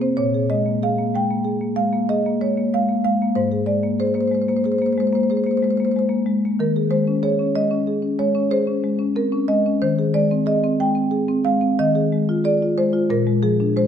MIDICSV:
0, 0, Header, 1, 2, 480
1, 0, Start_track
1, 0, Tempo, 638298
1, 130, Time_signature, 5, 2, 24, 8
1, 4447, Tempo, 654308
1, 10285, End_track
2, 0, Start_track
2, 0, Title_t, "Marimba"
2, 0, Program_c, 0, 12
2, 0, Note_on_c, 0, 41, 49
2, 0, Note_on_c, 0, 58, 41
2, 10, Note_on_c, 0, 60, 40
2, 11, Note_on_c, 0, 72, 56
2, 81, Note_off_c, 0, 58, 0
2, 101, Note_off_c, 0, 41, 0
2, 127, Note_on_c, 0, 73, 63
2, 132, Note_off_c, 0, 60, 0
2, 132, Note_off_c, 0, 72, 0
2, 132, Note_on_c, 0, 46, 49
2, 259, Note_on_c, 0, 68, 39
2, 364, Note_off_c, 0, 73, 0
2, 374, Note_on_c, 0, 75, 65
2, 377, Note_on_c, 0, 56, 41
2, 451, Note_off_c, 0, 68, 0
2, 496, Note_on_c, 0, 58, 36
2, 569, Note_off_c, 0, 56, 0
2, 605, Note_off_c, 0, 75, 0
2, 622, Note_on_c, 0, 68, 40
2, 626, Note_on_c, 0, 77, 66
2, 686, Note_off_c, 0, 58, 0
2, 740, Note_on_c, 0, 58, 39
2, 808, Note_off_c, 0, 68, 0
2, 848, Note_off_c, 0, 77, 0
2, 863, Note_on_c, 0, 56, 35
2, 868, Note_on_c, 0, 79, 63
2, 925, Note_off_c, 0, 58, 0
2, 981, Note_on_c, 0, 58, 38
2, 1046, Note_off_c, 0, 56, 0
2, 1086, Note_on_c, 0, 68, 41
2, 1164, Note_off_c, 0, 58, 0
2, 1211, Note_on_c, 0, 58, 39
2, 1277, Note_off_c, 0, 68, 0
2, 1315, Note_off_c, 0, 79, 0
2, 1325, Note_on_c, 0, 56, 42
2, 1325, Note_on_c, 0, 77, 68
2, 1400, Note_off_c, 0, 58, 0
2, 1451, Note_on_c, 0, 58, 39
2, 1517, Note_off_c, 0, 56, 0
2, 1556, Note_off_c, 0, 77, 0
2, 1573, Note_on_c, 0, 75, 69
2, 1577, Note_on_c, 0, 68, 43
2, 1641, Note_off_c, 0, 58, 0
2, 1701, Note_on_c, 0, 58, 40
2, 1765, Note_off_c, 0, 68, 0
2, 1802, Note_off_c, 0, 75, 0
2, 1813, Note_on_c, 0, 56, 35
2, 1815, Note_on_c, 0, 73, 57
2, 1887, Note_off_c, 0, 58, 0
2, 1936, Note_on_c, 0, 58, 41
2, 2003, Note_off_c, 0, 56, 0
2, 2043, Note_off_c, 0, 73, 0
2, 2060, Note_on_c, 0, 56, 36
2, 2061, Note_on_c, 0, 77, 72
2, 2125, Note_off_c, 0, 58, 0
2, 2170, Note_on_c, 0, 58, 39
2, 2174, Note_off_c, 0, 56, 0
2, 2281, Note_off_c, 0, 77, 0
2, 2289, Note_on_c, 0, 56, 43
2, 2290, Note_on_c, 0, 77, 70
2, 2361, Note_off_c, 0, 58, 0
2, 2421, Note_on_c, 0, 58, 41
2, 2480, Note_off_c, 0, 56, 0
2, 2498, Note_off_c, 0, 46, 0
2, 2519, Note_off_c, 0, 77, 0
2, 2523, Note_on_c, 0, 72, 66
2, 2527, Note_on_c, 0, 44, 52
2, 2534, Note_off_c, 0, 58, 0
2, 2644, Note_on_c, 0, 68, 39
2, 2754, Note_off_c, 0, 72, 0
2, 2755, Note_on_c, 0, 74, 61
2, 2760, Note_on_c, 0, 56, 40
2, 2836, Note_off_c, 0, 68, 0
2, 2882, Note_on_c, 0, 58, 38
2, 2954, Note_off_c, 0, 56, 0
2, 2989, Note_off_c, 0, 74, 0
2, 3006, Note_on_c, 0, 68, 42
2, 3007, Note_on_c, 0, 72, 59
2, 3062, Note_off_c, 0, 72, 0
2, 3062, Note_on_c, 0, 72, 47
2, 3075, Note_off_c, 0, 58, 0
2, 3114, Note_off_c, 0, 72, 0
2, 3114, Note_on_c, 0, 72, 49
2, 3121, Note_on_c, 0, 58, 42
2, 3163, Note_off_c, 0, 72, 0
2, 3163, Note_on_c, 0, 72, 48
2, 3196, Note_off_c, 0, 68, 0
2, 3214, Note_off_c, 0, 72, 0
2, 3214, Note_on_c, 0, 72, 48
2, 3245, Note_on_c, 0, 56, 36
2, 3269, Note_off_c, 0, 72, 0
2, 3269, Note_on_c, 0, 72, 45
2, 3313, Note_off_c, 0, 58, 0
2, 3321, Note_off_c, 0, 72, 0
2, 3321, Note_on_c, 0, 72, 48
2, 3372, Note_on_c, 0, 58, 42
2, 3376, Note_off_c, 0, 72, 0
2, 3376, Note_on_c, 0, 72, 48
2, 3433, Note_off_c, 0, 72, 0
2, 3433, Note_on_c, 0, 72, 52
2, 3435, Note_off_c, 0, 56, 0
2, 3490, Note_off_c, 0, 72, 0
2, 3490, Note_on_c, 0, 72, 48
2, 3500, Note_on_c, 0, 68, 43
2, 3547, Note_off_c, 0, 72, 0
2, 3547, Note_on_c, 0, 72, 51
2, 3558, Note_off_c, 0, 58, 0
2, 3598, Note_off_c, 0, 72, 0
2, 3598, Note_on_c, 0, 72, 49
2, 3624, Note_on_c, 0, 58, 41
2, 3655, Note_off_c, 0, 72, 0
2, 3655, Note_on_c, 0, 72, 53
2, 3683, Note_off_c, 0, 68, 0
2, 3705, Note_off_c, 0, 72, 0
2, 3705, Note_on_c, 0, 72, 49
2, 3744, Note_on_c, 0, 56, 45
2, 3762, Note_off_c, 0, 72, 0
2, 3762, Note_on_c, 0, 72, 53
2, 3806, Note_off_c, 0, 58, 0
2, 3813, Note_off_c, 0, 72, 0
2, 3813, Note_on_c, 0, 72, 49
2, 3856, Note_on_c, 0, 58, 43
2, 3874, Note_off_c, 0, 72, 0
2, 3874, Note_on_c, 0, 72, 52
2, 3927, Note_off_c, 0, 56, 0
2, 3934, Note_off_c, 0, 72, 0
2, 3934, Note_on_c, 0, 72, 45
2, 3985, Note_off_c, 0, 72, 0
2, 3985, Note_on_c, 0, 72, 53
2, 3992, Note_on_c, 0, 68, 45
2, 4037, Note_off_c, 0, 72, 0
2, 4037, Note_on_c, 0, 72, 46
2, 4043, Note_off_c, 0, 58, 0
2, 4090, Note_off_c, 0, 72, 0
2, 4090, Note_on_c, 0, 72, 50
2, 4108, Note_on_c, 0, 58, 43
2, 4144, Note_off_c, 0, 72, 0
2, 4144, Note_on_c, 0, 72, 46
2, 4171, Note_off_c, 0, 68, 0
2, 4191, Note_off_c, 0, 72, 0
2, 4191, Note_on_c, 0, 72, 51
2, 4231, Note_on_c, 0, 56, 41
2, 4241, Note_off_c, 0, 72, 0
2, 4241, Note_on_c, 0, 72, 47
2, 4289, Note_off_c, 0, 58, 0
2, 4290, Note_off_c, 0, 72, 0
2, 4290, Note_on_c, 0, 72, 50
2, 4341, Note_off_c, 0, 72, 0
2, 4341, Note_on_c, 0, 72, 46
2, 4361, Note_on_c, 0, 58, 40
2, 4397, Note_off_c, 0, 72, 0
2, 4397, Note_on_c, 0, 72, 53
2, 4411, Note_off_c, 0, 56, 0
2, 4448, Note_off_c, 0, 72, 0
2, 4448, Note_on_c, 0, 72, 47
2, 4481, Note_on_c, 0, 56, 35
2, 4501, Note_off_c, 0, 72, 0
2, 4501, Note_on_c, 0, 72, 49
2, 4535, Note_off_c, 0, 58, 0
2, 4538, Note_off_c, 0, 72, 0
2, 4578, Note_on_c, 0, 58, 40
2, 4583, Note_off_c, 0, 56, 0
2, 4700, Note_on_c, 0, 56, 44
2, 4764, Note_off_c, 0, 58, 0
2, 4841, Note_on_c, 0, 58, 44
2, 4885, Note_off_c, 0, 56, 0
2, 4896, Note_off_c, 0, 44, 0
2, 4943, Note_off_c, 0, 58, 0
2, 4946, Note_on_c, 0, 51, 55
2, 4952, Note_on_c, 0, 70, 73
2, 5070, Note_on_c, 0, 68, 42
2, 5168, Note_off_c, 0, 70, 0
2, 5173, Note_on_c, 0, 56, 44
2, 5176, Note_on_c, 0, 72, 74
2, 5247, Note_off_c, 0, 68, 0
2, 5299, Note_on_c, 0, 61, 41
2, 5358, Note_off_c, 0, 56, 0
2, 5398, Note_off_c, 0, 72, 0
2, 5412, Note_on_c, 0, 73, 70
2, 5413, Note_on_c, 0, 68, 46
2, 5481, Note_off_c, 0, 61, 0
2, 5532, Note_on_c, 0, 61, 43
2, 5598, Note_off_c, 0, 68, 0
2, 5635, Note_off_c, 0, 73, 0
2, 5649, Note_on_c, 0, 56, 39
2, 5651, Note_on_c, 0, 75, 72
2, 5717, Note_off_c, 0, 61, 0
2, 5764, Note_on_c, 0, 61, 44
2, 5835, Note_off_c, 0, 56, 0
2, 5885, Note_on_c, 0, 68, 49
2, 5953, Note_off_c, 0, 61, 0
2, 5996, Note_on_c, 0, 61, 42
2, 6073, Note_off_c, 0, 68, 0
2, 6105, Note_off_c, 0, 75, 0
2, 6116, Note_on_c, 0, 56, 44
2, 6118, Note_on_c, 0, 73, 75
2, 6189, Note_off_c, 0, 61, 0
2, 6232, Note_on_c, 0, 61, 44
2, 6309, Note_off_c, 0, 56, 0
2, 6349, Note_off_c, 0, 73, 0
2, 6350, Note_on_c, 0, 68, 50
2, 6354, Note_on_c, 0, 72, 78
2, 6427, Note_off_c, 0, 61, 0
2, 6469, Note_on_c, 0, 61, 45
2, 6546, Note_off_c, 0, 68, 0
2, 6592, Note_on_c, 0, 56, 42
2, 6665, Note_off_c, 0, 61, 0
2, 6702, Note_on_c, 0, 61, 44
2, 6785, Note_off_c, 0, 56, 0
2, 6814, Note_off_c, 0, 72, 0
2, 6826, Note_on_c, 0, 60, 39
2, 6830, Note_on_c, 0, 70, 73
2, 6900, Note_off_c, 0, 61, 0
2, 6948, Note_on_c, 0, 61, 46
2, 6950, Note_off_c, 0, 60, 0
2, 7062, Note_off_c, 0, 70, 0
2, 7064, Note_on_c, 0, 75, 82
2, 7067, Note_on_c, 0, 56, 47
2, 7143, Note_off_c, 0, 61, 0
2, 7196, Note_on_c, 0, 61, 47
2, 7263, Note_off_c, 0, 56, 0
2, 7296, Note_off_c, 0, 51, 0
2, 7300, Note_off_c, 0, 75, 0
2, 7310, Note_on_c, 0, 72, 75
2, 7311, Note_on_c, 0, 51, 61
2, 7315, Note_off_c, 0, 61, 0
2, 7435, Note_on_c, 0, 68, 46
2, 7543, Note_off_c, 0, 72, 0
2, 7548, Note_on_c, 0, 56, 44
2, 7548, Note_on_c, 0, 74, 75
2, 7627, Note_off_c, 0, 68, 0
2, 7674, Note_on_c, 0, 60, 44
2, 7743, Note_off_c, 0, 56, 0
2, 7781, Note_off_c, 0, 74, 0
2, 7783, Note_on_c, 0, 68, 47
2, 7789, Note_on_c, 0, 75, 75
2, 7866, Note_off_c, 0, 60, 0
2, 7911, Note_on_c, 0, 60, 47
2, 7980, Note_off_c, 0, 68, 0
2, 8021, Note_off_c, 0, 75, 0
2, 8033, Note_on_c, 0, 56, 43
2, 8033, Note_on_c, 0, 79, 72
2, 8104, Note_off_c, 0, 60, 0
2, 8142, Note_on_c, 0, 60, 44
2, 8225, Note_off_c, 0, 56, 0
2, 8260, Note_on_c, 0, 68, 50
2, 8340, Note_off_c, 0, 60, 0
2, 8386, Note_on_c, 0, 60, 46
2, 8459, Note_off_c, 0, 68, 0
2, 8494, Note_off_c, 0, 79, 0
2, 8506, Note_on_c, 0, 77, 82
2, 8511, Note_on_c, 0, 56, 46
2, 8582, Note_off_c, 0, 60, 0
2, 8627, Note_on_c, 0, 60, 46
2, 8705, Note_off_c, 0, 56, 0
2, 8723, Note_off_c, 0, 51, 0
2, 8741, Note_off_c, 0, 77, 0
2, 8751, Note_off_c, 0, 60, 0
2, 8759, Note_on_c, 0, 51, 59
2, 8759, Note_on_c, 0, 75, 86
2, 8878, Note_on_c, 0, 68, 48
2, 9003, Note_on_c, 0, 56, 42
2, 9067, Note_off_c, 0, 68, 0
2, 9124, Note_on_c, 0, 65, 46
2, 9189, Note_off_c, 0, 56, 0
2, 9216, Note_off_c, 0, 75, 0
2, 9238, Note_on_c, 0, 68, 47
2, 9242, Note_on_c, 0, 74, 79
2, 9311, Note_off_c, 0, 65, 0
2, 9370, Note_on_c, 0, 65, 46
2, 9428, Note_off_c, 0, 68, 0
2, 9469, Note_off_c, 0, 74, 0
2, 9482, Note_on_c, 0, 72, 81
2, 9483, Note_on_c, 0, 56, 46
2, 9555, Note_off_c, 0, 65, 0
2, 9595, Note_on_c, 0, 65, 47
2, 9673, Note_off_c, 0, 56, 0
2, 9690, Note_off_c, 0, 51, 0
2, 9711, Note_off_c, 0, 72, 0
2, 9717, Note_off_c, 0, 65, 0
2, 9718, Note_on_c, 0, 46, 58
2, 9722, Note_on_c, 0, 70, 76
2, 9844, Note_on_c, 0, 56, 43
2, 9953, Note_off_c, 0, 70, 0
2, 9957, Note_on_c, 0, 53, 44
2, 9958, Note_on_c, 0, 68, 69
2, 10037, Note_off_c, 0, 56, 0
2, 10087, Note_on_c, 0, 62, 43
2, 10154, Note_off_c, 0, 53, 0
2, 10194, Note_off_c, 0, 68, 0
2, 10206, Note_on_c, 0, 56, 43
2, 10209, Note_on_c, 0, 72, 75
2, 10280, Note_off_c, 0, 62, 0
2, 10285, Note_off_c, 0, 46, 0
2, 10285, Note_off_c, 0, 56, 0
2, 10285, Note_off_c, 0, 72, 0
2, 10285, End_track
0, 0, End_of_file